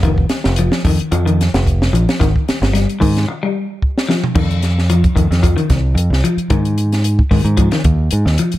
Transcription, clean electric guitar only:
X:1
M:4/4
L:1/16
Q:"Swing 16ths" 1/4=111
K:Fm
V:1 name="Clean electric guitar" clef=bass
E,2 z2 F,2 E,2 F, E,2 z3 F,2 | E,2 z2 G,2 E,2 z G,2 z3 F,2 | E,2 z2 F,2 E,2 F, E,2 z3 F,2 | E,2 z4 E,2 F, E,2 z3 F,2 |]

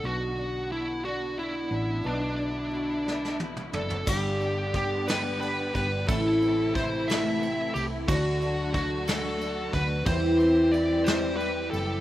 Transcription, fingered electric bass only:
X:1
M:6/8
L:1/8
Q:3/8=60
K:Bm
V:1 name="Fingered electric bass" clef=bass
B,,,4- B,,, A,,, | B,,,4- B,,, F,,, | [K:G] G,,,4- G,,, G,,, | A,,,4- A,,, C,, |
D,,4- D,, D,, | E,,4- E,, F,,, |]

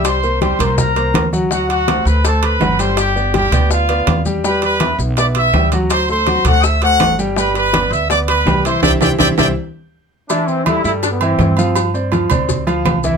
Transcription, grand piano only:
X:1
M:4/4
L:1/8
Q:1/4=164
K:C
V:1 name="Grand piano"
[G,Gg] [_B,_Bc] [G,Gg] [B,Bc]2 [B,Bc]2 [^F,^F^f] | [^F,^F^f]2 [A,Ac]2 [A,Ac]2 [F,Ff] [G,Gg]- | [G,Gg] [B,Bd] [G,Gg] [B,Bd]2 [B,Bd]2 [G,Gg] | [G,Gg]2 [B,Be]2 [B,Be]2 [G,Gg] [^F,^F^f]- |
[^F,^F^f] [A,Ac] [F,Ff] [A,Ac]2 [A,Ac]2 [G,Gg] | [G,Gg]2 [B,Bd]2 [B,Bd]2 [G,Gg] [E,Ee] | [EGc] [EGc] [EGc] [EGc] z4 | [E,Ee]2 [G,GA] [G,GA]2 [E,Ee]2 [F,Ff]- |
[F,Ff] [Ccd] [F,Ff] [Ccd]2 [F,Ff]2 [E,Ee] |]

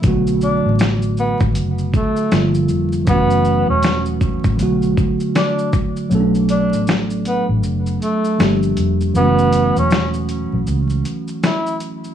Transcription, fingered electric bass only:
X:1
M:4/4
L:1/16
Q:"Swing 16ths" 1/4=79
K:Bm
V:1 name="Fingered electric bass" clef=bass
B,,,3 A,,,4 A,,, F,,,2 z2 G,,,2 =F,,,2 | F,,,3 E,,,4 A,,, B,,,2 z6 | B,,,3 A,,,4 A,,, F,,,2 z2 G,,,2 =F,,,2 | F,,,3 E,,,4 B,,, C,,2 z6 |]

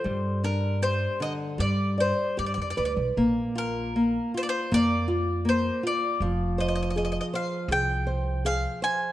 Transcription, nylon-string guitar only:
X:1
M:4/4
L:1/8
Q:1/4=79
K:Gphr
V:1 name="Nylon-string guitar"
G, D G D, G, d G =B | B, F B, F B, F B, F | F, c A c A c A c |]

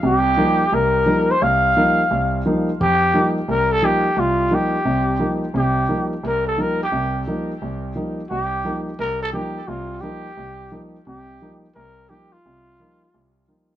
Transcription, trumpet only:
X:1
M:4/4
L:1/8
Q:"Swing" 1/4=174
K:Cdor
V:1 name="Trumpet"
G4 B3 c | f6 z2 | G3 z B A G2 | F2 G4- G z |
G3 z B A B G- | G2 z6 | G3 z B A G2 | F2 G4- G z |
G3 z B2 G F- | F6 z2 |]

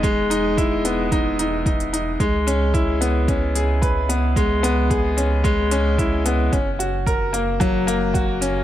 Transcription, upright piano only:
X:1
M:4/4
L:1/8
Q:1/4=111
K:C#dor
V:1 name="Upright piano"
G, D E B, D D D D | G, C E B, C G B B, | G, B, G C G, C E B, | C F A A, F, A, F C |]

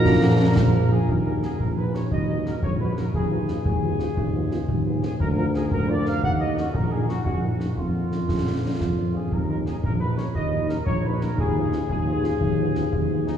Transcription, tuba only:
X:1
M:6/8
L:1/8
Q:3/8=116
K:Ebm
V:1 name="Tuba" clef=bass
B,,,3 B,,,3 | E,,3 B,,,3 | E,,3 B,,,3 | E,,3 E,,3 |
E,,3 E,,3 | =D,,3 D,,3 | E,,3 B,,,3 | B,,,3 F,,3 |
B,,,3 F,,3 | E,,3 B,,,3 | E,,3 B,,,3 | E,,3 E,,3 |
E,,3 E,,3 |]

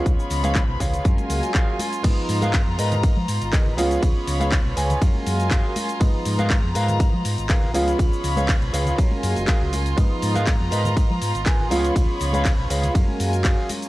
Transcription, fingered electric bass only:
X:1
M:4/4
L:1/16
Q:"Swing 16ths" 1/4=121
K:G#dor
V:1 name="Fingered electric bass" clef=bass
C,, z C,,3 B,,, C,, z F,, z C,, z4 z | G,, z G,,3 E,, G,,3 E, G,, G,,,3 C,, z | C,, z C,,3 B,,, C,, z F,, z F,,3 z3 | G,, z G,,3 E,, G,,3 E, G,, G,,,3 C,, z |
C,, z C,,3 B,,, C,, z3 F,, F,,, z C,,3 | G,, z G,,3 E,, G,,3 E, G,, G,,,3 C,, z | C,, z C,,3 B,,, C,, z F,, z F,,3 z3 |]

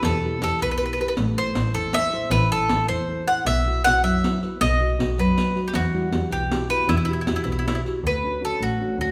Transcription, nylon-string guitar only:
X:1
M:6/8
L:1/8
Q:3/8=105
K:Em
V:1 name="Nylon-string guitar"
[B,,EGB] [EGB] [EGB] B,, [EGB] [EGB] | A, [EAc] [EAc] E, [EAc] [EAc] | E, [EAc] [EAc] E, [EAc] [EAc] | B, [EFB] [EFB] F, [EFB] [EFB] |
B, [FB^d] [FBd] F, [FBd] [FBd] | E, [G,EF] [EFG] B,, [EFG] [EFG] | B,, [EFG] [EFG] B,, [EFG] [EFG] | [K:D] D, [CDF] [CDF] A, [CDF] [CDF] |]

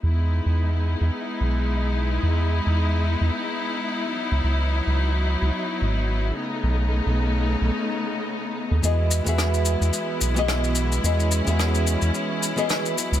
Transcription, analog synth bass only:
X:1
M:4/4
L:1/16
Q:"Swing 16ths" 1/4=109
K:E
V:1 name="Analog synth bass" clef=bass
E,,3 E,,4 E,, z2 B,,,6 | E,,3 E,,4 E,, z6 z C,, | C,,3 C,,4 C,, z2 G,,,4 z2 | B,,,3 B,,,4 B,,, z6 z D,, |
E,,3 E,,4 E,, z2 B,,,6 | E,,3 E,,4 E,, z6 z C,, |]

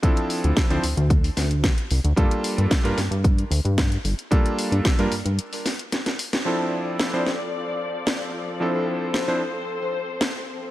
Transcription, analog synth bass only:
X:1
M:4/4
L:1/16
Q:1/4=112
K:Dm
V:1 name="Analog synth bass" clef=bass
z3 D,, z D,, D,, D,,2 z D,,2 z2 C,, D,, | G,, z2 G,, z G,, G,, G,,2 z D,, G,,2 z G,,, z | z3 G,, z G,, G,, G,, z8 | z16 |
z16 |]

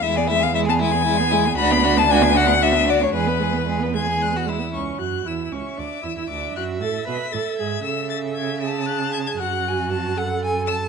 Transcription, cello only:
X:1
M:6/8
L:1/16
Q:3/8=77
K:Ephr
V:1 name="Cello" clef=bass
E,,12 | [K:Emix] D,,12 | E,,8- E,,2 z2 | C,,2 F,,2 E,,2 C,,2 D,,2 E,, E,, |
D,,2 F,,2 A,,2 B,,2 A,,2 G,,2 | C,12 | F,,12 |]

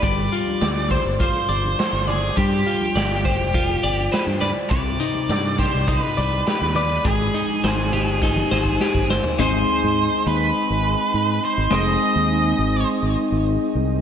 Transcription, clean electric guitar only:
X:1
M:4/4
L:1/8
Q:1/4=103
K:none
V:1 name="Clean electric guitar"
G, F d c F d c d | G, F d c F d c d | C, _E d G E d G d | _A, _E c G E c G c |
[_A,C_E_Ac]8 | [_A,C_E_Ac]8 |]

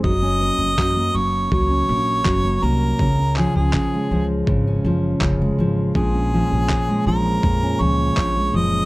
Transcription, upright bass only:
X:1
M:4/4
L:1/16
Q:1/4=81
K:Db
V:1 name="Upright bass" clef=bass
G,,,3 G,,, G,,2 G,,,2 D,,2 B,,,2 G,,,2 C,,2 | D,,3 D,, D,2 D,,2 A,,,2 G,,,2 F,,,2 A,,,2 | B,,,3 B,,, B,,2 B,,,2 F,,2 D,,2 B,,,2 G,,,2 |]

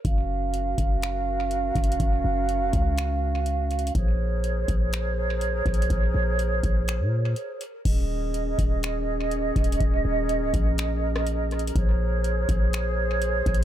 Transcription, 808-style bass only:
X:1
M:4/4
L:1/16
Q:1/4=123
K:Ebdor
V:1 name="808-style bass" clef=bass
G,,,6 G,,,8 G,,,2 | G,,,2 G,,,3 F,,, D,,8- D,,2 | B,,,6 B,,,8 B,,,2 | B,,,2 B,,,4 B,,,3 B,,3 z4 |
E,,,6 E,,,8 E,,,2 | E,,,2 E,,,3 D,,, B,,,8- B,,,2 | B,,,6 B,,,8 B,,,2 |]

